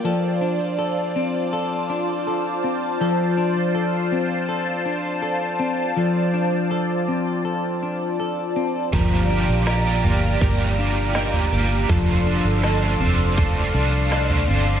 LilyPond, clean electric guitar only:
\new Staff \with { instrumentName = "Clean electric guitar" } { \time 4/4 \key f \major \tempo 4 = 81 <f a'>8 d'8 a'8 c'8 a'8 d'8 a'8 c'8 | <f a'>8 d'8 a'8 c'8 a'8 d'8 a'8 c'8 | <f a'>8 d'8 a'8 c'8 a'8 d'8 a'8 c'8 | <f bes'>8 d'8 bes'8 bes8 bes'8 d'8 bes'8 bes8 |
<f a'>8 d'8 a'8 c'8 a'8 d'8 a'8 c'8 | }